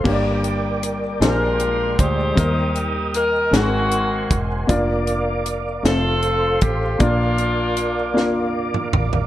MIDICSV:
0, 0, Header, 1, 6, 480
1, 0, Start_track
1, 0, Key_signature, -2, "major"
1, 0, Tempo, 772201
1, 35, Time_signature, 6, 3, 24, 8
1, 5760, End_track
2, 0, Start_track
2, 0, Title_t, "Tonewheel organ"
2, 0, Program_c, 0, 16
2, 30, Note_on_c, 0, 70, 55
2, 31, Note_on_c, 0, 79, 52
2, 35, Note_on_c, 0, 74, 45
2, 37, Note_on_c, 0, 86, 64
2, 745, Note_off_c, 0, 70, 0
2, 749, Note_off_c, 0, 86, 0
2, 752, Note_on_c, 0, 56, 57
2, 752, Note_on_c, 0, 84, 60
2, 1460, Note_off_c, 0, 74, 0
2, 1466, Note_off_c, 0, 56, 0
2, 1466, Note_off_c, 0, 84, 0
2, 1480, Note_on_c, 0, 70, 59
2, 1480, Note_on_c, 0, 87, 68
2, 1481, Note_on_c, 0, 75, 53
2, 2171, Note_off_c, 0, 79, 0
2, 2190, Note_off_c, 0, 75, 0
2, 2190, Note_off_c, 0, 87, 0
2, 2193, Note_on_c, 0, 78, 50
2, 2193, Note_on_c, 0, 84, 63
2, 2196, Note_on_c, 0, 80, 50
2, 2903, Note_off_c, 0, 70, 0
2, 2907, Note_off_c, 0, 78, 0
2, 2907, Note_off_c, 0, 84, 0
2, 2908, Note_off_c, 0, 80, 0
2, 2917, Note_on_c, 0, 77, 51
2, 2917, Note_on_c, 0, 86, 66
2, 2918, Note_on_c, 0, 70, 62
2, 2919, Note_on_c, 0, 74, 52
2, 3628, Note_off_c, 0, 86, 0
2, 3629, Note_off_c, 0, 70, 0
2, 3629, Note_off_c, 0, 74, 0
2, 3634, Note_on_c, 0, 69, 55
2, 3635, Note_on_c, 0, 72, 59
2, 3637, Note_on_c, 0, 84, 62
2, 4347, Note_off_c, 0, 69, 0
2, 4347, Note_off_c, 0, 72, 0
2, 4348, Note_off_c, 0, 84, 0
2, 4354, Note_on_c, 0, 70, 54
2, 4354, Note_on_c, 0, 74, 53
2, 4358, Note_on_c, 0, 86, 68
2, 5760, Note_off_c, 0, 70, 0
2, 5760, Note_off_c, 0, 74, 0
2, 5760, Note_off_c, 0, 77, 0
2, 5760, Note_off_c, 0, 86, 0
2, 5760, End_track
3, 0, Start_track
3, 0, Title_t, "Saxophone section"
3, 0, Program_c, 1, 65
3, 759, Note_on_c, 1, 70, 86
3, 760, Note_on_c, 1, 62, 64
3, 765, Note_on_c, 1, 65, 62
3, 1212, Note_off_c, 1, 70, 0
3, 1239, Note_on_c, 1, 72, 105
3, 1246, Note_on_c, 1, 63, 73
3, 1246, Note_on_c, 1, 67, 78
3, 1452, Note_off_c, 1, 62, 0
3, 1455, Note_off_c, 1, 65, 0
3, 1717, Note_off_c, 1, 72, 0
3, 1935, Note_off_c, 1, 67, 0
3, 1936, Note_off_c, 1, 63, 0
3, 1963, Note_on_c, 1, 70, 90
3, 2182, Note_off_c, 1, 70, 0
3, 2203, Note_on_c, 1, 66, 91
3, 2208, Note_on_c, 1, 58, 69
3, 2208, Note_on_c, 1, 60, 63
3, 2739, Note_off_c, 1, 66, 0
3, 2896, Note_off_c, 1, 58, 0
3, 2896, Note_off_c, 1, 60, 0
3, 3641, Note_on_c, 1, 60, 81
3, 3641, Note_on_c, 1, 65, 71
3, 3643, Note_on_c, 1, 69, 91
3, 4094, Note_off_c, 1, 69, 0
3, 4119, Note_on_c, 1, 67, 88
3, 4333, Note_off_c, 1, 60, 0
3, 4333, Note_off_c, 1, 65, 0
3, 4356, Note_off_c, 1, 67, 0
3, 4359, Note_on_c, 1, 65, 88
3, 4360, Note_on_c, 1, 62, 58
3, 4362, Note_on_c, 1, 58, 65
3, 5292, Note_off_c, 1, 62, 0
3, 5293, Note_off_c, 1, 58, 0
3, 5317, Note_off_c, 1, 65, 0
3, 5760, End_track
4, 0, Start_track
4, 0, Title_t, "Grand piano"
4, 0, Program_c, 2, 0
4, 0, Control_c, 2, 64, 127
4, 24, Note_on_c, 2, 58, 81
4, 32, Note_on_c, 2, 62, 65
4, 35, Note_on_c, 2, 43, 59
4, 37, Note_on_c, 2, 67, 72
4, 44, Control_c, 2, 64, 0
4, 46, Note_on_c, 2, 73, 67
4, 81, Note_off_c, 2, 73, 0
4, 86, Note_on_c, 2, 74, 85
4, 158, Control_c, 2, 64, 127
4, 621, Note_off_c, 2, 58, 0
4, 625, Note_off_c, 2, 62, 0
4, 628, Note_off_c, 2, 67, 0
4, 652, Note_off_c, 2, 74, 0
4, 730, Note_off_c, 2, 43, 0
4, 747, Note_on_c, 2, 56, 60
4, 755, Note_on_c, 2, 62, 51
4, 758, Note_on_c, 2, 46, 58
4, 760, Note_on_c, 2, 67, 48
4, 764, Control_c, 2, 64, 0
4, 768, Note_on_c, 2, 72, 64
4, 872, Control_c, 2, 64, 127
4, 1342, Note_off_c, 2, 56, 0
4, 1347, Note_off_c, 2, 62, 0
4, 1349, Note_off_c, 2, 67, 0
4, 1353, Note_off_c, 2, 72, 0
4, 1451, Note_off_c, 2, 46, 0
4, 1462, Note_on_c, 2, 55, 61
4, 1467, Note_on_c, 2, 58, 67
4, 1473, Note_on_c, 2, 51, 58
4, 1475, Note_on_c, 2, 63, 64
4, 1480, Note_on_c, 2, 70, 76
4, 1483, Control_c, 2, 64, 0
4, 1582, Control_c, 2, 64, 127
4, 2060, Note_off_c, 2, 55, 0
4, 2062, Note_off_c, 2, 58, 0
4, 2066, Note_off_c, 2, 63, 0
4, 2069, Note_off_c, 2, 70, 0
4, 2169, Note_off_c, 2, 51, 0
4, 2183, Note_on_c, 2, 56, 64
4, 2188, Note_on_c, 2, 60, 50
4, 2195, Note_on_c, 2, 44, 58
4, 2197, Note_on_c, 2, 66, 54
4, 2202, Note_on_c, 2, 68, 47
4, 2203, Control_c, 2, 64, 0
4, 2239, Note_off_c, 2, 68, 0
4, 2245, Note_on_c, 2, 70, 67
4, 2319, Control_c, 2, 64, 127
4, 2780, Note_off_c, 2, 56, 0
4, 2783, Note_off_c, 2, 60, 0
4, 2787, Note_off_c, 2, 66, 0
4, 2811, Note_off_c, 2, 70, 0
4, 2890, Note_off_c, 2, 44, 0
4, 2903, Note_on_c, 2, 58, 73
4, 2911, Note_on_c, 2, 62, 73
4, 2918, Note_on_c, 2, 65, 76
4, 2923, Note_on_c, 2, 74, 91
4, 2924, Control_c, 2, 64, 0
4, 3025, Control_c, 2, 64, 127
4, 3500, Note_off_c, 2, 58, 0
4, 3504, Note_off_c, 2, 62, 0
4, 3507, Note_off_c, 2, 65, 0
4, 3510, Note_off_c, 2, 74, 0
4, 3623, Note_on_c, 2, 57, 56
4, 3630, Note_on_c, 2, 60, 60
4, 3636, Note_on_c, 2, 65, 50
4, 3641, Control_c, 2, 64, 0
4, 3644, Note_on_c, 2, 72, 65
4, 3754, Control_c, 2, 64, 127
4, 4220, Note_off_c, 2, 57, 0
4, 4223, Note_off_c, 2, 60, 0
4, 4227, Note_off_c, 2, 65, 0
4, 4231, Note_off_c, 2, 72, 0
4, 4343, Note_on_c, 2, 58, 71
4, 4350, Note_on_c, 2, 62, 65
4, 4355, Note_on_c, 2, 46, 50
4, 4356, Note_on_c, 2, 65, 66
4, 4361, Note_on_c, 2, 74, 74
4, 4362, Control_c, 2, 64, 0
4, 4466, Control_c, 2, 64, 127
4, 4940, Note_off_c, 2, 58, 0
4, 4944, Note_off_c, 2, 62, 0
4, 4947, Note_off_c, 2, 65, 0
4, 4949, Note_off_c, 2, 74, 0
4, 5049, Note_off_c, 2, 46, 0
4, 5058, Note_on_c, 2, 58, 69
4, 5064, Note_on_c, 2, 62, 63
4, 5071, Note_on_c, 2, 65, 65
4, 5078, Note_on_c, 2, 77, 78
4, 5658, Note_off_c, 2, 58, 0
4, 5660, Note_off_c, 2, 62, 0
4, 5664, Note_off_c, 2, 65, 0
4, 5667, Note_off_c, 2, 77, 0
4, 5760, End_track
5, 0, Start_track
5, 0, Title_t, "Fingered electric bass"
5, 0, Program_c, 3, 33
5, 33, Note_on_c, 3, 31, 83
5, 729, Note_off_c, 3, 31, 0
5, 753, Note_on_c, 3, 34, 97
5, 1209, Note_off_c, 3, 34, 0
5, 1237, Note_on_c, 3, 38, 84
5, 1457, Note_off_c, 3, 38, 0
5, 1475, Note_on_c, 3, 39, 81
5, 2170, Note_off_c, 3, 39, 0
5, 2192, Note_on_c, 3, 32, 97
5, 2648, Note_off_c, 3, 32, 0
5, 2677, Note_on_c, 3, 28, 80
5, 2897, Note_off_c, 3, 28, 0
5, 2916, Note_on_c, 3, 29, 97
5, 3610, Note_off_c, 3, 29, 0
5, 3635, Note_on_c, 3, 29, 114
5, 4090, Note_off_c, 3, 29, 0
5, 4114, Note_on_c, 3, 33, 90
5, 4335, Note_off_c, 3, 33, 0
5, 4352, Note_on_c, 3, 34, 85
5, 5528, Note_off_c, 3, 34, 0
5, 5553, Note_on_c, 3, 33, 83
5, 5760, Note_off_c, 3, 33, 0
5, 5760, End_track
6, 0, Start_track
6, 0, Title_t, "Drums"
6, 34, Note_on_c, 9, 36, 98
6, 34, Note_on_c, 9, 49, 62
6, 96, Note_off_c, 9, 36, 0
6, 96, Note_off_c, 9, 49, 0
6, 274, Note_on_c, 9, 42, 52
6, 336, Note_off_c, 9, 42, 0
6, 516, Note_on_c, 9, 42, 66
6, 578, Note_off_c, 9, 42, 0
6, 759, Note_on_c, 9, 38, 91
6, 759, Note_on_c, 9, 42, 80
6, 821, Note_off_c, 9, 38, 0
6, 821, Note_off_c, 9, 42, 0
6, 992, Note_on_c, 9, 42, 55
6, 1054, Note_off_c, 9, 42, 0
6, 1236, Note_on_c, 9, 42, 67
6, 1237, Note_on_c, 9, 36, 94
6, 1298, Note_off_c, 9, 42, 0
6, 1299, Note_off_c, 9, 36, 0
6, 1476, Note_on_c, 9, 36, 92
6, 1478, Note_on_c, 9, 42, 76
6, 1538, Note_off_c, 9, 36, 0
6, 1540, Note_off_c, 9, 42, 0
6, 1713, Note_on_c, 9, 42, 52
6, 1775, Note_off_c, 9, 42, 0
6, 1953, Note_on_c, 9, 42, 72
6, 2016, Note_off_c, 9, 42, 0
6, 2198, Note_on_c, 9, 38, 98
6, 2198, Note_on_c, 9, 42, 80
6, 2260, Note_off_c, 9, 42, 0
6, 2261, Note_off_c, 9, 38, 0
6, 2433, Note_on_c, 9, 42, 62
6, 2495, Note_off_c, 9, 42, 0
6, 2676, Note_on_c, 9, 42, 68
6, 2678, Note_on_c, 9, 36, 83
6, 2738, Note_off_c, 9, 42, 0
6, 2740, Note_off_c, 9, 36, 0
6, 2916, Note_on_c, 9, 42, 79
6, 2917, Note_on_c, 9, 36, 94
6, 2979, Note_off_c, 9, 36, 0
6, 2979, Note_off_c, 9, 42, 0
6, 3152, Note_on_c, 9, 42, 56
6, 3215, Note_off_c, 9, 42, 0
6, 3393, Note_on_c, 9, 42, 68
6, 3455, Note_off_c, 9, 42, 0
6, 3639, Note_on_c, 9, 38, 106
6, 3639, Note_on_c, 9, 42, 79
6, 3701, Note_off_c, 9, 42, 0
6, 3702, Note_off_c, 9, 38, 0
6, 3870, Note_on_c, 9, 42, 52
6, 3932, Note_off_c, 9, 42, 0
6, 4111, Note_on_c, 9, 42, 69
6, 4115, Note_on_c, 9, 36, 95
6, 4173, Note_off_c, 9, 42, 0
6, 4177, Note_off_c, 9, 36, 0
6, 4351, Note_on_c, 9, 42, 71
6, 4353, Note_on_c, 9, 36, 99
6, 4413, Note_off_c, 9, 42, 0
6, 4416, Note_off_c, 9, 36, 0
6, 4589, Note_on_c, 9, 42, 54
6, 4651, Note_off_c, 9, 42, 0
6, 4828, Note_on_c, 9, 42, 73
6, 4890, Note_off_c, 9, 42, 0
6, 5079, Note_on_c, 9, 38, 52
6, 5141, Note_off_c, 9, 38, 0
6, 5435, Note_on_c, 9, 45, 63
6, 5497, Note_off_c, 9, 45, 0
6, 5553, Note_on_c, 9, 43, 91
6, 5615, Note_off_c, 9, 43, 0
6, 5674, Note_on_c, 9, 43, 83
6, 5736, Note_off_c, 9, 43, 0
6, 5760, End_track
0, 0, End_of_file